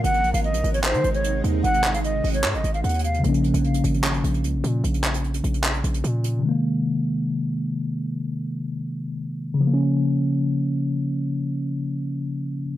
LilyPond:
<<
  \new Staff \with { instrumentName = "Flute" } { \time 4/4 \key bes \minor \tempo 4 = 150 ges''8. f''16 ees''8. des''16 c''8. des''4~ des''16 | ges''8. f''16 ees''8. des''8 ees''8 f''16 ges''8 f''8 | r1 | r1 |
r1 | r1 | r1 | r1 | }
  \new Staff \with { instrumentName = "Ambient pad" } { \time 4/4 \key bes \minor <c aes ees' bes'>1~ | <c aes ees' bes'>1 | r1 | r1 |
r1 | r1 | r1 | r1 | }
  \new Staff \with { instrumentName = "Tine electric piano" } { \clef bass \time 4/4 \key bes \minor r1 | r1 | <des f bes des'>1~ | <des f bes des'>1 |
<c ees aes bes>1~ | <c ees aes bes>1 | <des f bes des'>1~ | <des f bes des'>1 | }
  \new Staff \with { instrumentName = "808-style bass" } { \clef bass \time 4/4 \key bes \minor aes,,8 bes,,16 aes,,8 bes,,16 aes,,8. ees16 aes,,4 ees,8 | aes,,4. aes,,8 aes,16 aes,,16 aes,,8 ees,4 | bes,,8. bes,,8. aes,,4 bes,,8 des,16 bes,,16 bes,8 | bes,,4. bes,,4 bes,,8 bes,4 |
r1 | r1 | r1 | r1 | }
  \new DrumStaff \with { instrumentName = "Drums" } \drummode { \time 4/4 hh16 hh16 hh16 hh16 hh16 hh16 hh16 hh16 <hc hh>16 hh16 hh16 hh16 hh8 hh8 | hh16 hh16 hc16 hh16 hh8 hho16 hh16 <hc hh>16 hh16 hh16 hh16 hh32 hh32 hh32 hh32 hh16 hh16 | hh16 hh16 hh16 hh16 hh16 hh16 hh16 hh16 <hc hh>16 hh16 hh16 hh16 hh8 hh8 | hh16 hh16 <hc hh>16 hh16 hh16 hh16 hh16 hh16 <hc hh>16 hh16 hh16 hh16 hh8 hh8 |
r4 r4 r4 r4 | r4 r4 r4 r4 | r4 r4 r4 r4 | r4 r4 r4 r4 | }
>>